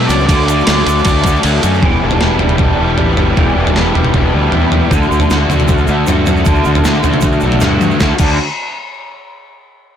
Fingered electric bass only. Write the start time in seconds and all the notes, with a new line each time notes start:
0.09 C#2
0.29 D2
0.68 D2
0.87 D2
1.05 D2
1.44 D2
1.64 F#2
1.83 E1
2.02 E1
2.22 E1
2.42 E1
2.60 E1
2.80 E1
2.99 A1
3.18 G1
3.37 E1
3.57 E1
3.76 E1
3.96 E1
4.14 E1
4.34 D2
4.53 E2
4.92 D2
5.11 D2
5.31 D2
5.50 D2
5.69 D2
5.88 D2
6.08 G2
6.27 F#2
6.47 D2
6.66 D2
6.85 D2
7.05 D2
7.23 D2
7.43 B1
7.62 G2
8.01 D2
8.20 D2